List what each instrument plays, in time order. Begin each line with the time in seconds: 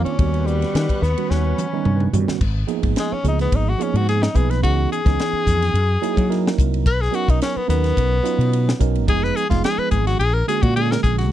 Already playing: tine electric piano D#3 A#3 C4 D4 F4, string machine A#3 D5 D6
0.05 tenor saxophone C#4, muted fretless electric bass stroke, ride
0.18 fretless electric bass D#2, tine electric piano D#3 G3 B3 C#4 F#4, string machine B4 F#5 C#6, kick, ride
0.34 ride
0.46 tenor saxophone G3, hi-hat pedal
0.62 snare, ride
0.75 fretless electric bass D#3, snare, ride
0.89 kick, ride
1.02 fretless electric bass D#2, tenor saxophone B3, snare, hi-hat pedal
1.17 tine electric piano D#3 G3 B3 C#4 F#4, ride
1.30 fretless electric bass D#2, tenor saxophone C#4, snare
1.58 hi-hat pedal, mid tom
1.73 tine electric piano D#3 G3 B3 C#4 D#4
1.85 fretless electric bass G2, mid tom
2.00 mid tom
2.13 fretless electric bass G2, tine electric piano D#3 G3 B3 C#4 F#4, floor tom, hi-hat pedal
2.28 muted fretless electric bass stroke, snare
2.41 fretless electric bass G#1, kick, crash
2.67 tine electric piano F3 A#3 B3 D#4 G#4, hi-hat pedal, ride
2.83 fretless electric bass G#1, kick, ride
2.96 tenor saxophone G#3, snare, ride
3.12 tenor saxophone C#4, muted fretless electric bass stroke
3.23 fretless electric bass C#2, tine electric piano F3 A#3 B3 D#4 G#4, hi-hat pedal, ride
3.28 tenor saxophone D#4
3.39 tenor saxophone B3, snare, ride
3.52 fretless electric bass G#1, kick, ride
3.56 tenor saxophone D#4
3.69 tenor saxophone F#4
3.78 tine electric piano F3 A#3 B3 D#4 G#4, hi-hat pedal, ride
3.83 tenor saxophone C#4
3.94 fretless electric bass G#2, tenor saxophone F#4, ride
4.09 tenor saxophone G#4, snare, ride
4.23 tenor saxophone D#4, snare
4.34 fretless electric bass B1, tine electric piano F3 A#3 B3 D#4 B4, tenor saxophone G#4, kick, hi-hat pedal, ride
4.50 tenor saxophone B4, snare, ride
4.62 fretless electric bass C#2, tine electric piano E3 B3 C#4 D#4 G#4, tenor saxophone F#4, kick, ride
4.92 tenor saxophone G#4, hi-hat pedal, ride
5.05 fretless electric bass C#2, tine electric piano E3 B3 C#4 D#4 G#4, kick, snare, ride
5.19 snare, ride
5.33 muted fretless electric bass stroke
5.46 fretless electric bass F2, kick, snare, hi-hat pedal, ride
5.62 snare, ride
5.74 fretless electric bass F#2, ride
6.02 tine electric piano F#3 A#3 D#4 E4 G#4, hi-hat pedal, ride
6.17 fretless electric bass F#3, kick, ride
6.29 tine electric piano F#3 A#3 D#4 E4 A#4, snare, ride
6.47 snare
6.58 fretless electric bass C2, kick, hi-hat pedal, ride
6.74 ride
6.86 fretless electric bass B1, tenor saxophone B4, kick, ride
7.01 tenor saxophone G#4, snare
7.11 tine electric piano F#3 B3 C#4 D#4 A#4, tenor saxophone F#4, hi-hat pedal, ride
7.28 fretless electric bass B1, tenor saxophone D#4, kick, ride
7.42 tenor saxophone C#4, snare, ride
7.56 tenor saxophone B3, muted fretless electric bass stroke
7.68 fretless electric bass D#2, tine electric piano F#3 B3 C#4 D#4 A#4, tenor saxophone B3, snare, hi-hat pedal, ride
7.84 snare, ride
7.97 fretless electric bass B1, kick, ride
8.23 tine electric piano F#3 B3 C#4 D#4 F4, hi-hat pedal, ride
8.38 fretless electric bass B2, ride
8.53 ride
8.69 snare
8.79 fretless electric bass B1, tine electric piano F#3 B3 C#4 D#4 A#4, kick, hi-hat pedal, ride
8.95 ride
9.07 fretless electric bass F1, tine electric piano F3 G#3 B3 D#4 G#4, tenor saxophone G#4, kick, ride
9.24 tenor saxophone B4, snare
9.36 tenor saxophone G#4, hi-hat pedal, ride
9.49 fretless electric bass F1, tine electric piano F3 G#3 B3 D#4 G#4, tenor saxophone F4, kick, snare, ride
9.64 tenor saxophone G#4, snare, ride
9.78 tenor saxophone B4, muted fretless electric bass stroke
9.91 fretless electric bass G#1, tenor saxophone G#4, kick, hi-hat pedal, ride
10.07 tenor saxophone F#4, snare, ride
10.19 fretless electric bass A#1, tenor saxophone G#4, ride
10.33 tenor saxophone A#4
10.48 tine electric piano D3 G#3 A#3 C#4 F#4, tenor saxophone G#4, hi-hat pedal, ride
10.63 fretless electric bass A#2, tenor saxophone F#4, kick, ride
10.76 tine electric piano D3 G#3 A#3 C#4 G#4, tenor saxophone G#4, ride
10.91 tenor saxophone A#4, snare
11.03 fretless electric bass A#1, tenor saxophone G#4, kick, hi-hat pedal, ride
11.18 tenor saxophone F#4, snare, ride